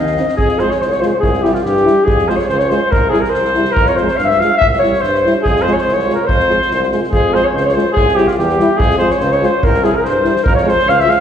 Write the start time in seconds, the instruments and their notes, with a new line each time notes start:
Already playing: tuba D#2
0.00 clarinet D#5
0.06 snare
0.17 euphonium C4 D#4, snare
0.28 snare
0.37 tuba F2, clarinet G#4, cornet G#4, kick
0.49 snare
0.58 euphonium F4, clarinet C5, cornet C5, snare
0.63 euphonium G#3
0.68 clarinet C#5, cornet C#5, snare
0.79 tuba C2, clarinet C5, cornet C5, snare
0.89 clarinet C#5, cornet C#5, snare
0.99 euphonium F4, clarinet C5, cornet C5, snare
1.04 euphonium G#3, clarinet C5, cornet C5
1.14 cornet C5
1.19 tuba C2, clarinet G#4, cornet G#4, kick
1.33 snare
1.41 euphonium E4, clarinet G4, cornet G4, snare
1.46 euphonium G3, clarinet F4
1.54 cornet F4, snare
1.62 tuba G2, clarinet G4, cornet G4, snare
1.77 snare
1.84 euphonium E4, snare
1.89 euphonium G3
2.04 tuba F2, cornet G#4, clarinet G#4
2.08 kick
2.19 snare
2.28 euphonium G#3 F4, clarinet C5, cornet C5, snare
2.37 cornet C#5, clarinet C#5, snare
2.47 tuba C#2, cornet C5, clarinet C5, snare
2.58 cornet C#5, clarinet C#5, snare
2.69 euphonium G#3 F4, clarinet C5, cornet C5, snare
2.91 tuba C2, clarinet A#4, cornet A#4, kick
3.10 euphonium E4, cornet G#4, clarinet G#4, snare
3.15 euphonium G3
3.21 cornet A#4, clarinet A#4, snare
3.30 cornet C5
3.34 tuba C2, clarinet C5, snare
3.45 snare
3.54 euphonium E4, snare
3.59 euphonium G3
3.65 snare
3.72 cornet A#4
3.77 tuba F2, clarinet A#4, kick
3.86 clarinet C#5, cornet C#5, snare
3.95 euphonium F4, clarinet C5, cornet C5, snare
4.02 euphonium G#3
4.08 snare
4.17 tuba G2, clarinet F5, cornet F5, snare
4.24 cornet E5
4.29 clarinet E5, snare
4.38 euphonium F4, clarinet F5, cornet F5, snare
4.43 euphonium G#3
4.57 tuba C2, cornet E5, clarinet E5
4.62 kick
4.69 clarinet E5, cornet E5, snare
4.78 euphonium E4, cornet C#5, clarinet C#5
4.83 euphonium G3, snare
4.94 snare
5.00 tuba G2, clarinet C5, cornet C5, snare
5.14 snare
5.26 euphonium G3 E4, snare
5.42 tuba F2, cornet G#4, clarinet G#4, kick
5.56 snare
5.62 cornet C5, clarinet C5
5.67 euphonium G#3 F4, snare
5.73 cornet C#5, clarinet C#5
5.78 cornet C5, snare
5.85 tuba C2, clarinet C5, snare
5.94 cornet C#5, clarinet C#5
5.99 snare
6.08 euphonium G#3 F4, snare
6.14 cornet A#4, clarinet A#4
6.25 tuba F2, cornet C5, clarinet C5, kick
6.39 snare
6.49 euphonium G#3 F4, snare
6.62 snare
6.71 tuba C2, snare
6.83 snare
6.92 euphonium G#3 F4, snare
7.04 snare
7.11 tuba F2, cornet G#4, clarinet G#4, kick
7.33 euphonium G#3 F4, clarinet C5, cornet C5, snare
7.44 cornet C#5, clarinet C#5
7.52 tuba C#2, cornet C5, clarinet C5
7.57 snare
7.65 clarinet C#5, cornet C#5, snare
7.74 euphonium G#3 F4, cornet C5, clarinet C5
7.78 snare
7.92 cornet G#4, clarinet G#4
7.96 tuba C2, kick
8.08 snare
8.16 euphonium G3 E4, cornet G4, clarinet G4, snare
8.27 cornet F4, clarinet F4, snare
8.37 tuba E2, cornet G4, snare
8.42 clarinet G4
8.49 snare
8.58 euphonium G3 E4, snare
8.77 tuba F2, cornet G#4, clarinet G#4, kick
8.90 snare
8.98 euphonium G#3 F4, cornet C5, snare
9.04 clarinet C5
9.10 cornet C#5, clarinet C#5, snare
9.20 tuba C#2, cornet C5, clarinet C5, snare
9.31 cornet C#5, clarinet C#5, snare
9.41 euphonium G#3 F4, cornet C5, clarinet C5, snare
9.63 tuba C2, clarinet A#4, cornet A#4, kick
9.74 snare
9.82 euphonium G3 E4, cornet G#4, clarinet G#4, snare
9.93 clarinet A#4, cornet A#4
10.04 tuba G2, clarinet C5, cornet C5, snare
10.23 euphonium G3 E4, snare
10.36 snare
10.43 tuba F2, clarinet A#4, cornet A#4, kick
10.55 clarinet C#5, cornet C#5, snare
10.64 euphonium G#3 F4, clarinet C5
10.68 cornet C5, snare
10.79 snare
10.86 tuba C#2, clarinet F5, cornet F5, snare
11.00 cornet E5, clarinet E5, snare
11.05 euphonium G#3 F4
11.09 clarinet F5, cornet F5, snare